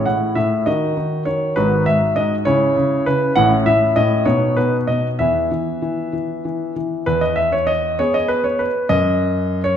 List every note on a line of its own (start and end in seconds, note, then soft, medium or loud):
0.00 0.62 E4 soft
0.00 0.62 G#4 soft
0.06 0.34 A2 soft
0.06 0.36 F#5 medium
0.35 0.66 A2 soft
0.35 0.66 E5 medium
0.66 0.96 D#3 soft
0.66 1.53 D#4 soft
0.66 1.53 F#4 soft
0.66 1.23 D#5 medium
0.97 1.25 D#3 soft
1.25 1.56 D#3 soft
1.25 1.56 C#5 medium
1.56 1.86 G#1 soft
1.56 1.86 G#2 medium
1.56 2.43 D#4 soft
1.56 2.43 F#4 soft
1.56 1.83 B4 medium
1.86 2.15 G#2 soft
1.86 2.14 E5 medium
2.16 2.46 G#2 medium
2.16 2.34 D#5 medium
2.45 2.75 C#3 medium
2.45 3.32 C#4 soft
2.45 3.32 E4 soft
2.45 3.06 C#5 medium
2.77 3.05 C#3 medium
3.06 3.36 C#3 medium
3.06 3.36 B4 medium
3.35 3.66 A1 medium
3.35 3.65 A2 medium
3.35 4.23 C#4 soft
3.35 4.23 E4 soft
3.35 3.54 F#5 medium
3.66 3.95 A2 soft
3.66 3.97 E5 medium
3.96 4.26 A2 medium
3.96 4.24 D#5 medium
4.25 4.56 B2 medium
4.25 5.15 B3 soft
4.25 5.15 D#4 soft
4.25 4.57 C#5 medium
4.57 4.87 B2 soft
4.57 4.76 B4 medium
4.87 5.19 B2 soft
4.87 5.07 D#5 medium
5.19 5.50 E2 soft
5.19 5.50 E3 soft
5.19 7.03 B3 soft
5.19 7.03 E4 soft
5.19 6.72 E5 medium
5.51 5.81 E3 soft
5.82 6.12 E3 soft
6.13 6.43 E3 soft
6.45 6.75 E3 soft
6.76 7.06 E3 soft
7.06 7.96 E2 medium
7.06 7.22 B4 medium
7.21 7.37 D#5 medium
7.36 7.52 E5 medium
7.52 7.68 C#5 medium
7.67 7.98 D#5 medium
7.99 8.65 B3 soft
7.99 8.65 G#4 soft
7.99 8.14 C#5 medium
8.14 8.30 D#5 medium
8.28 8.44 B4 medium
8.44 8.59 C#5 medium
8.59 8.87 B4 medium
8.89 9.77 F#2 medium
8.89 9.61 D#5 medium
9.64 9.77 C#5 medium